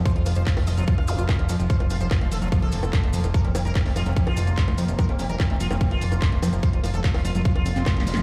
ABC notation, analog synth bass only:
X:1
M:4/4
L:1/16
Q:1/4=146
K:F
V:1 name="Analog synth bass" clef=bass
z F,,, F,,, F,,, z F,,, F,,, F,,, z _G,,, F,,, F,,, z F,,, F,, F,,, | z F,,, F,,, F,,, z F,,, F,,, F,,, z _G,,, F,,, F,,, z F,,, F,, F,,, | z F,,, F,,, F,,, z F,,, F,,, F,,, z _G,,, F,,, F,,, z F,,, F,, F,,, | z F,,, F,,, F,,, z F,,, F,,, F,,, z _G,,, F,,, F,,, z F,,, F,, F,,, |
z F,,, F,,, F,,, z F,,, F,,, F,,, z F,,, F,,, F,,, z F,,, F,,, F,,, |]